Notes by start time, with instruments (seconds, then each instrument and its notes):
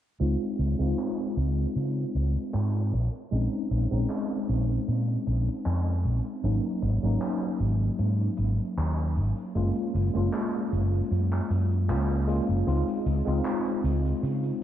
0.20 fretless electric bass C#2, tine electric piano G#3 C4 D#4 F4, closed hi-hat
0.41 closed hi-hat
0.59 fretless electric bass C#2, closed hi-hat
0.79 fretless electric bass C#2, tine electric piano G#3 C4 D#4 F4, closed hi-hat
0.99 clap
1.20 closed hi-hat
1.37 fretless electric bass C#2, closed hi-hat
1.59 closed hi-hat
1.76 fretless electric bass C#3, closed hi-hat
1.97 closed hi-hat
2.15 fretless electric bass C#2, closed hi-hat
2.35 muted fretless electric bass stroke, closed hi-hat
2.54 fretless electric bass G#2, clap, closed hi-hat
2.75 closed hi-hat
2.93 fretless electric bass A#1, closed hi-hat
3.15 closed hi-hat
3.31 fretless electric bass A#1, tine electric piano G#3 C4 C#4 D#4, closed hi-hat
3.53 closed hi-hat
3.71 fretless electric bass A#1, closed hi-hat
3.91 fretless electric bass A#1, tine electric piano G#3 C4 C#4 D#4, closed hi-hat
4.10 clap, closed hi-hat
4.31 closed hi-hat
4.49 fretless electric bass A#1, closed hi-hat
4.70 closed hi-hat
4.88 fretless electric bass A#2, closed hi-hat
5.08 closed hi-hat
5.27 fretless electric bass A#1, closed hi-hat
5.48 muted fretless electric bass stroke, closed hi-hat
5.66 fretless electric bass F2, clap, closed hi-hat
5.87 closed hi-hat
6.05 fretless electric bass A#1, closed hi-hat
6.26 closed hi-hat
6.43 fretless electric bass G#1, tine electric piano F#3 A#3 C#4 D#4, closed hi-hat
6.64 closed hi-hat
6.82 fretless electric bass G#1, closed hi-hat
7.03 fretless electric bass G#1, tine electric piano F#3 A#3 C#4 D#4, closed hi-hat
7.20 clap, closed hi-hat
7.42 closed hi-hat
7.60 fretless electric bass G#1, closed hi-hat
7.81 closed hi-hat
7.99 fretless electric bass G#2, closed hi-hat
8.21 closed hi-hat
8.37 fretless electric bass G#1, closed hi-hat
8.59 muted fretless electric bass stroke, closed hi-hat
8.77 fretless electric bass D#2, clap, closed hi-hat
8.99 closed hi-hat
9.16 fretless electric bass G#1, closed hi-hat
9.37 closed hi-hat
9.55 fretless electric bass F#1, tine electric piano G#3 A#3 C#4 F4, closed hi-hat
9.76 closed hi-hat
9.94 fretless electric bass F#1, closed hi-hat
10.14 fretless electric bass F#1, tine electric piano G#3 A#3 C#4 F4, closed hi-hat
10.33 clap, closed hi-hat
10.55 closed hi-hat
10.72 fretless electric bass F#1, closed hi-hat
10.94 closed hi-hat
11.11 fretless electric bass F#2, closed hi-hat
11.33 clap, closed hi-hat
11.50 fretless electric bass F#2, closed hi-hat
11.71 closed hi-hat
11.88 fretless electric bass C#2, tine electric piano G#3 A#3 C#4 F4, clap, closed hi-hat
12.11 closed hi-hat
12.27 tine electric piano G#3 A#3 C#4 F4, closed hi-hat
12.49 fretless electric bass F#1, closed hi-hat
12.67 fretless electric bass C#2, tine electric piano G#3 C4 D#4 F4, closed hi-hat
12.88 closed hi-hat
13.06 fretless electric bass C#2, closed hi-hat
13.25 fretless electric bass C#2, tine electric piano G#3 C4 D#4 F4, closed hi-hat
13.45 clap, closed hi-hat
13.65 closed hi-hat
13.84 fretless electric bass C#2, closed hi-hat
14.06 closed hi-hat
14.23 fretless electric bass C#3, closed hi-hat
14.44 closed hi-hat